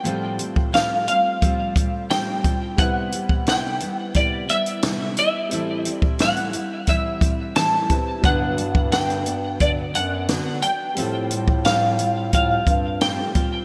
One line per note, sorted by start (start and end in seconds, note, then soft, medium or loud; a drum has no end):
0.00 0.39 A2 medium
0.00 2.73 A2 medium
0.00 0.70 G5 medium
0.04 0.39 F3 medium
0.04 0.39 G3 medium
0.04 2.74 G3 medium
0.04 0.38 C4 medium
0.04 2.74 C4 medium
0.04 0.37 F4 medium
0.04 2.75 F4 medium
0.04 closed hi-hat medium
0.08 2.76 A4 medium
0.38 0.72 G3 soft
0.38 0.73 C4 soft
0.38 0.73 F4 soft
0.38 closed hi-hat medium
0.56 kick medium
0.72 1.07 A2 medium
0.72 1.07 F3 medium
0.72 1.08 G3 medium
0.72 1.07 C4 medium
0.72 1.06 F4 medium
0.72 1.07 F5 medium
0.72 snare medium
0.72 closed hi-hat medium
1.07 1.40 G3 soft
1.07 1.41 C4 soft
1.07 1.41 F4 soft
1.07 2.10 F5 medium
1.07 closed hi-hat medium
1.41 1.75 F3 medium
1.41 1.76 G3 medium
1.41 1.75 C4 medium
1.41 1.74 F4 medium
1.41 kick medium
1.41 closed hi-hat medium
1.75 2.09 G3 soft
1.75 2.09 C4 soft
1.75 2.10 F4 soft
1.75 kick medium
1.75 closed hi-hat medium
2.09 2.44 A2 medium
2.09 2.44 F3 medium
2.09 2.44 G3 medium
2.09 2.44 C4 medium
2.09 2.42 F4 medium
2.09 2.58 G5 medium
2.09 snare loud
2.09 closed hi-hat medium
2.44 2.77 G3 soft
2.44 2.78 C4 soft
2.44 2.78 F4 soft
2.44 kick medium
2.44 closed hi-hat medium
2.77 3.12 C3 medium
2.77 5.46 G3 medium
2.77 3.12 G3 medium
2.77 3.12 B3 medium
2.77 5.47 C4 medium
2.77 3.11 E4 medium
2.77 5.48 E4 medium
2.77 3.48 F#5 medium
2.77 kick loud
2.77 closed hi-hat medium
2.82 5.49 B4 medium
3.12 3.46 G3 soft
3.12 3.47 B3 soft
3.12 3.46 E4 soft
3.12 closed hi-hat medium
3.29 kick medium
3.46 3.81 C3 medium
3.46 3.81 G3 medium
3.46 3.80 B3 medium
3.46 3.79 E4 medium
3.46 3.97 G5 medium
3.46 snare medium
3.46 closed hi-hat medium
3.80 4.13 G3 soft
3.80 4.14 B3 soft
3.80 4.14 E4 soft
3.80 closed hi-hat medium
3.97 4.18 F#5 medium
4.14 4.48 C3 soft
4.14 4.49 G3 medium
4.14 4.48 B3 medium
4.14 4.46 E4 medium
4.14 4.51 D5 medium
4.14 kick medium
4.14 closed hi-hat medium
4.48 4.82 G3 soft
4.48 4.83 B3 soft
4.48 4.82 E4 medium
4.48 5.18 E5 medium
4.48 closed hi-hat medium
4.66 closed hi-hat medium
4.82 5.17 C3 medium
4.82 5.17 G3 medium
4.82 5.17 B3 medium
4.82 5.16 E4 medium
4.82 snare loud
4.82 closed hi-hat medium
5.17 5.52 G3 soft
5.17 5.52 B3 soft
5.17 5.51 E4 soft
5.17 5.92 E5 medium
5.17 closed hi-hat medium
5.49 5.85 A2 medium
5.49 5.86 E3 medium
5.49 7.84 G3 medium
5.49 5.86 G3 medium
5.49 7.85 C4 medium
5.49 7.86 E4 medium
5.49 closed hi-hat medium
5.53 5.85 C4 medium
5.53 5.84 E4 medium
5.53 7.87 A4 medium
5.85 6.19 G3 soft
5.85 6.19 C4 soft
5.85 6.19 E4 soft
5.85 closed hi-hat medium
5.92 6.21 D5 medium
6.02 kick medium
6.19 6.53 A2 medium
6.19 6.53 E3 medium
6.19 6.54 G3 medium
6.19 6.53 C4 medium
6.19 6.52 E4 medium
6.19 6.85 F#5 medium
6.19 snare medium
6.19 closed hi-hat medium
6.36 closed hi-hat soft
6.53 6.86 G3 soft
6.53 6.87 C4 soft
6.53 6.87 E4 soft
6.53 closed hi-hat medium
6.87 7.21 E3 medium
6.87 7.21 G3 medium
6.87 7.21 C4 medium
6.87 7.20 E4 medium
6.87 7.56 E5 medium
6.87 kick medium
6.87 closed hi-hat medium
7.21 7.55 G3 soft
7.21 7.55 C4 soft
7.21 7.55 E4 soft
7.21 kick medium
7.21 closed hi-hat medium
7.55 7.89 A2 medium
7.55 7.90 E3 medium
7.55 7.90 G3 medium
7.55 7.90 C4 medium
7.55 7.89 E4 medium
7.55 8.03 A5 medium
7.55 snare loud
7.55 closed hi-hat medium
7.90 8.24 G3 soft
7.90 8.24 C4 soft
7.90 8.24 E4 soft
7.90 8.25 B4 soft
7.90 kick medium
7.90 closed hi-hat medium
8.22 8.57 G2 medium
8.22 9.56 G2 loud
8.22 8.58 D3 medium
8.22 10.91 F#3 medium
8.22 8.58 F#3 medium
8.22 8.57 B3 medium
8.22 10.92 D4 medium
8.22 8.56 D4 medium
8.22 8.92 F#5 medium
8.22 kick loud
8.22 closed hi-hat medium
8.27 10.94 B4 medium
8.57 8.91 F#3 soft
8.57 8.91 B3 soft
8.57 8.91 D4 soft
8.57 closed hi-hat medium
8.75 kick medium
8.92 9.26 G2 medium
8.92 9.26 D3 medium
8.92 9.26 F#3 medium
8.92 9.25 B3 medium
8.92 9.24 D4 medium
8.92 9.56 G5 medium
8.92 snare medium
8.92 closed hi-hat medium
9.10 closed hi-hat soft
9.25 9.59 F#3 soft
9.25 9.60 B3 soft
9.25 9.60 D4 soft
9.25 closed hi-hat medium
9.60 9.87 G2 medium
9.60 9.94 D3 medium
9.60 9.94 F#3 medium
9.60 9.94 B3 medium
9.60 9.93 D4 medium
9.60 9.70 D5 medium
9.60 kick medium
9.60 closed hi-hat medium
9.94 10.48 F#2 medium
9.94 10.28 F#3 soft
9.94 10.29 B3 soft
9.94 10.28 D4 soft
9.94 10.59 F#5 medium
9.94 closed hi-hat medium
10.28 10.63 D3 medium
10.28 10.63 F#3 medium
10.28 10.62 B3 medium
10.28 10.61 D4 medium
10.28 snare medium
10.28 closed hi-hat medium
10.62 10.97 F#3 soft
10.62 10.97 B3 soft
10.62 10.96 D4 soft
10.62 11.61 G5 medium
10.62 closed hi-hat medium
10.95 12.29 A2 medium
10.95 11.30 A2 medium
10.95 11.31 F3 medium
10.95 13.64 G3 medium
10.95 11.31 G3 medium
10.95 13.65 C4 medium
10.95 11.30 C4 medium
10.95 13.65 F4 soft
10.95 11.29 F4 medium
10.95 closed hi-hat medium
11.00 13.65 A4 medium
11.30 11.64 G3 soft
11.30 11.65 C4 soft
11.30 11.64 F4 soft
11.30 closed hi-hat medium
11.48 kick medium
11.64 11.99 A2 medium
11.64 11.99 F3 medium
11.64 11.99 G3 medium
11.64 11.98 C4 medium
11.64 11.97 F4 medium
11.64 12.29 F5 medium
11.64 snare medium
11.64 closed hi-hat medium
11.98 12.32 G3 soft
11.98 12.33 C4 soft
11.98 12.32 F4 soft
11.98 closed hi-hat medium
12.32 12.60 A2 medium
12.32 12.66 F3 medium
12.32 12.67 G3 medium
12.32 12.67 C4 medium
12.32 12.65 F4 medium
12.32 13.01 F5 medium
12.32 kick medium
12.32 closed hi-hat medium
12.66 13.21 G2 medium
12.66 13.01 G3 soft
12.66 13.01 C4 soft
12.66 13.01 F4 soft
12.66 kick medium
12.66 closed hi-hat medium
13.01 13.35 A2 medium
13.01 13.35 F3 medium
13.01 13.35 G3 medium
13.01 13.35 C4 medium
13.01 13.34 F4 medium
13.01 13.49 G5 medium
13.01 snare loud
13.01 closed hi-hat medium
13.35 13.65 G3 soft
13.35 13.65 C4 soft
13.35 13.65 F4 medium
13.35 kick medium
13.35 closed hi-hat medium